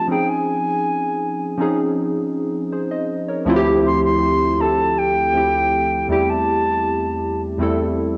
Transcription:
Already playing: synth keys F3 G#3 A3 C4 D4 F4 G4
0.08 synth keys F3 C4 C#4 D#4, flute G5
0.12 synth keys G#4
0.29 flute G#5
1.58 synth keys F3 C4 C#4 D#4
1.62 synth keys G#4
2.72 synth keys G#4 C5
2.91 synth keys C5 D#5
3.28 synth keys A#4 C#5
3.45 synth keys D2 F3 A3 C4 E4
3.50 synth keys F4
3.56 synth keys G4
3.86 flute C6
4.04 flute C6
4.58 synth keys D2 F3 A3 C4 E4, flute A5
4.62 synth keys A4
4.98 flute G5
5.33 synth keys D2 F3 A3 C4 E4
5.37 synth keys G4
6.08 synth keys E2 G3 A3 C4 E4, flute G5
6.12 synth keys G4
6.29 flute A5
7.58 synth keys E2 G3 A3 C4 E4
7.62 synth keys A4

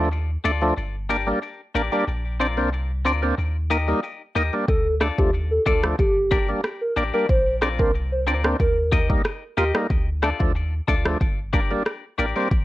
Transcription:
Already playing: sub bass D#2
0.44 sub bass D2, tonewheel organ A3 D4, clean electric guitar D4 F4 A4 D5
0.62 tonewheel organ F3 A3 D4
0.77 sub bass G1
1.09 tonewheel organ A#3 D4, clean electric guitar D4 G4 A#4 D5
1.27 tonewheel organ G3 A#3 D4
1.75 sub bass A1, tonewheel organ A#3 D4, clean electric guitar D4 G4 A#4 D5
1.92 tonewheel organ G3 A#3 D4, clean electric guitar D4 G4 A#4 D5
2.08 sub bass A#1
2.40 tonewheel organ C4 D4, clean electric guitar C4 F4 A#4 D5
2.57 sub bass C2, tonewheel organ A#3 C4 D4
3.05 sub bass D2, clean electric guitar C4 F4 A#4 D5, tonewheel organ C4 D4
3.22 tonewheel organ A#3 C4 D4
3.38 sub bass D#2
3.70 tonewheel organ A#3 D#4, clean electric guitar D#4 G4 A#4 D#5
3.88 tonewheel organ G3 A#3 D#4
4.35 sub bass D#2, tonewheel organ A#3 D#4, clean electric guitar D#4 G4 A#4 D#5
4.53 tonewheel organ G3 A#3 D4
4.68 sub bass D2, soft synth lead A4, kick
5.01 tonewheel organ A3 D4, clean electric guitar D4 F4 A4 D5, cross-stick
5.18 sub bass D#2, tonewheel organ F3 A3 D4, soft synth lead G4, kick
5.51 soft synth lead A4
5.66 sub bass D2, tonewheel organ A3 D4, clean electric guitar D4 F4 A4 D5, soft synth lead A4, kick
5.83 tonewheel organ F3 A3 D4, cross-stick
5.99 sub bass G1, soft synth lead G4, kick
6.31 tonewheel organ A#3 D4, clean electric guitar D4 G4 A#4 D5, kick
6.48 tonewheel organ G3 A#3 D4
6.64 cross-stick
6.81 soft synth lead A#4
6.96 sub bass A1, tonewheel organ A#3 D4, clean electric guitar D4 G4 A#4 D5
7.14 tonewheel organ G3 A#3 D4, clean electric guitar D4 G4 A#4 D5, soft synth lead A#4
7.29 sub bass A#1, soft synth lead C5, kick
7.61 tonewheel organ C4 D4, clean electric guitar C4 F4 A#4 D5, cross-stick
7.79 sub bass C2, tonewheel organ A#3 C4 D4, soft synth lead A#4, kick
8.12 soft synth lead C5
8.27 sub bass D2, clean electric guitar C4 F4 A#4 D5, tonewheel organ C4 D4, soft synth lead C5
8.44 tonewheel organ A#3 C4 D4, cross-stick
8.60 sub bass D#2, soft synth lead A#4, kick
8.92 tonewheel organ A#3 D#4, clean electric guitar D#4 G4 A#4 D#5, kick
9.10 tonewheel organ G3 A#3 D#4, kick
9.25 cross-stick
9.57 sub bass D#2, tonewheel organ A#3 F4, clean electric guitar D#4 G4 A#4 D#5, soft synth lead G4
9.75 tonewheel organ G3 A#3 D#4, cross-stick
9.90 sub bass D2, kick
10.22 tonewheel organ A3 D4, clean electric guitar D4 F4 A4 D5, cross-stick
10.40 sub bass D#2, tonewheel organ F3 A3 D4, kick
10.88 sub bass D2, tonewheel organ A3 D4, clean electric guitar D4 F4 A4 D5, kick
11.05 tonewheel organ F3 A3 D4, cross-stick
11.21 sub bass G1, kick
11.53 tonewheel organ A#3 D4, clean electric guitar D4 G4 A#4 D5, kick
11.70 tonewheel organ G3 A#3 D4
11.86 cross-stick
12.18 sub bass A1, tonewheel organ A#3 D4, clean electric guitar D4 G4 A#4 D5
12.35 tonewheel organ G3 A#3 C4, clean electric guitar D4 G4 A#4 D5
12.51 sub bass A#1, kick

